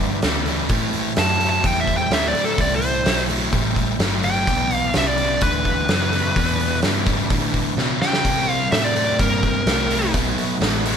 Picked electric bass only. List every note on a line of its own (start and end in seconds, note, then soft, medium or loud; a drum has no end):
0.00 0.22 G2 medium
0.24 0.69 D2 medium
0.70 0.92 A2 medium
0.95 muted picked electric bass stroke soft
1.17 1.63 F#2 medium
1.64 2.10 E2 medium
2.11 2.33 D2 medium
2.34 muted picked electric bass stroke soft
2.58 3.04 C2 medium
3.05 3.51 B1 medium
3.53 3.99 A1 medium
4.00 4.46 G1 medium
4.47 4.93 B1 medium
4.95 5.41 C2 medium
5.42 5.88 D2 medium
5.89 6.35 F#2 medium
6.36 6.82 E2 medium
6.83 7.29 G2 medium
7.30 7.76 A2 medium
7.77 8.00 B2 medium
8.01 muted picked electric bass stroke soft
8.25 8.71 C3 medium
8.72 9.18 A2 medium
9.19 9.65 G2 medium
9.66 10.13 C2 medium
10.14 10.36 B1 medium
10.38 muted picked electric bass stroke soft
10.61 10.97 A1 medium